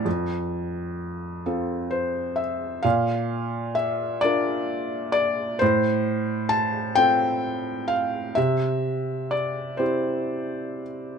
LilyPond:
\new Staff \with { instrumentName = "Felt piano" } { \time 6/8 \key f \major \tempo 4. = 43 << { r2 c''8 e''8 | f''4 e''8 d''4 d''8 | c''4 a''8 g''4 f''8 | e''4 d''8 c''4 r8 | } \\ { f,4. <c' f' a'>4. | bes,4. <d' f' bes'>4. | a,4. <c' f' a'>4. | c4. <c' e' g'>4. | } >> }